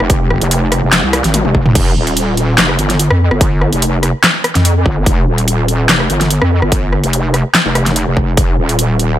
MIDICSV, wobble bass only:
0, 0, Header, 1, 2, 480
1, 0, Start_track
1, 0, Tempo, 413793
1, 114, Time_signature, 4, 2, 24, 8
1, 10663, End_track
2, 0, Start_track
2, 0, Title_t, "Wobble bass"
2, 0, Program_c, 0, 39
2, 2, Note_on_c, 0, 29, 97
2, 461, Note_off_c, 0, 29, 0
2, 482, Note_on_c, 0, 29, 101
2, 941, Note_off_c, 0, 29, 0
2, 962, Note_on_c, 0, 29, 97
2, 1181, Note_off_c, 0, 29, 0
2, 1202, Note_on_c, 0, 36, 96
2, 1421, Note_off_c, 0, 36, 0
2, 1442, Note_on_c, 0, 32, 102
2, 1661, Note_off_c, 0, 32, 0
2, 1682, Note_on_c, 0, 29, 96
2, 1901, Note_off_c, 0, 29, 0
2, 1922, Note_on_c, 0, 29, 100
2, 2016, Note_off_c, 0, 29, 0
2, 2034, Note_on_c, 0, 29, 100
2, 2256, Note_off_c, 0, 29, 0
2, 2273, Note_on_c, 0, 27, 100
2, 2976, Note_off_c, 0, 27, 0
2, 2993, Note_on_c, 0, 29, 101
2, 3216, Note_off_c, 0, 29, 0
2, 3233, Note_on_c, 0, 31, 102
2, 3581, Note_off_c, 0, 31, 0
2, 3601, Note_on_c, 0, 41, 96
2, 3821, Note_off_c, 0, 41, 0
2, 3842, Note_on_c, 0, 31, 101
2, 4301, Note_off_c, 0, 31, 0
2, 4322, Note_on_c, 0, 29, 103
2, 4781, Note_off_c, 0, 29, 0
2, 5282, Note_on_c, 0, 41, 100
2, 5616, Note_off_c, 0, 41, 0
2, 5634, Note_on_c, 0, 31, 104
2, 5856, Note_off_c, 0, 31, 0
2, 5874, Note_on_c, 0, 29, 96
2, 6096, Note_off_c, 0, 29, 0
2, 6114, Note_on_c, 0, 27, 100
2, 6816, Note_off_c, 0, 27, 0
2, 6834, Note_on_c, 0, 29, 100
2, 7056, Note_off_c, 0, 29, 0
2, 7074, Note_on_c, 0, 31, 103
2, 7421, Note_off_c, 0, 31, 0
2, 7442, Note_on_c, 0, 41, 100
2, 7661, Note_off_c, 0, 41, 0
2, 7682, Note_on_c, 0, 31, 98
2, 8141, Note_off_c, 0, 31, 0
2, 8162, Note_on_c, 0, 29, 99
2, 8621, Note_off_c, 0, 29, 0
2, 8882, Note_on_c, 0, 29, 98
2, 9341, Note_off_c, 0, 29, 0
2, 9362, Note_on_c, 0, 29, 96
2, 9696, Note_off_c, 0, 29, 0
2, 9714, Note_on_c, 0, 29, 102
2, 9936, Note_off_c, 0, 29, 0
2, 9954, Note_on_c, 0, 27, 98
2, 10656, Note_off_c, 0, 27, 0
2, 10663, End_track
0, 0, End_of_file